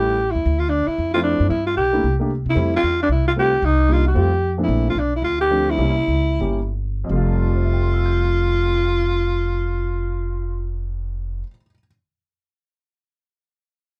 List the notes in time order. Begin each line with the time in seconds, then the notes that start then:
Already playing: A1 G3 A3 C#4 E4 G4
0.31 D#2 E4
0.46 D2
0.59 F4
0.69 D4
0.87 E4, muted upright bass stroke
0.98 F2
1.14 F3 A3 C4 E4 F4
1.23 D4
1.40 F#2
1.50 G2 E4
1.67 F4
1.77 B1 G4
1.93 A3 A#3 D4 E4
2.04 C2
2.19 A3 A#3 D4 G4
2.46 C3 E4
2.55 F2 G3 A3 C4 E4
2.76 F4
2.83 E2
3.03 D4
3.09 C2 E4
3.28 F4
3.36 G3 A3 C4 F4 G4
3.62 C2 D#4
3.89 G3 A#3 D4 D#4
3.93 F4
4.08 G4
4.14 F2 G3 A3 C4 F4
4.58 A#2 F3 A3 C4 D4
4.63 E4
4.68 A#1
4.90 F4
4.95 B1 D4
5.16 E4
5.22 D2 F4
5.41 G4
5.50 F3 A3 C4 D4
5.70 E4
5.78 C2 G3 A#3 C#4 E4
6.08 C#2
6.40 G1 G3 A#3 C#4 G4
7.04 F2 F3
7.09 F1 G3 A3 F4
7.16 F4
7.49 G4
7.55 C5
7.64 E5
7.73 G5
7.83 C6
7.94 E6
8.06 G6